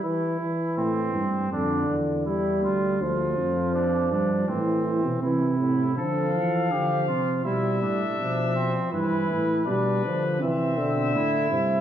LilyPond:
<<
  \new Staff \with { instrumentName = "Trumpet" } { \time 4/4 \key d \dorian \tempo 4 = 81 r1 | r1 | f''2 e''2 | b'4 b'4 e''2 | }
  \new Staff \with { instrumentName = "Flugelhorn" } { \time 4/4 \key d \dorian e'4 c'4 d'8 r8 e'8 f'8 | f'4 d'8 d'8 c'4 e'4 | a'4 g'8 f'8 e'8 d'4 c'8 | e'4 d'4 c'4 e'4 | }
  \new Staff \with { instrumentName = "Euphonium" } { \clef bass \time 4/4 \key d \dorian e8 e4 r8 d4 g4 | f2 e4 e8 a,8 | f4 f4 g4 f4 | e4 g8 f8 e8 d4 c8 | }
  \new Staff \with { instrumentName = "Tuba" } { \clef bass \time 4/4 \key d \dorian r4 a,8 g,8 f,8 e,4 d,8 | d,8 f,4 g,8 a,8. b,16 c4 | d8 e8 d8 c8 b,8 a,8 b,4 | g,8 a,8 b,8 d8 c8 b,8 a,8 g,8 | }
>>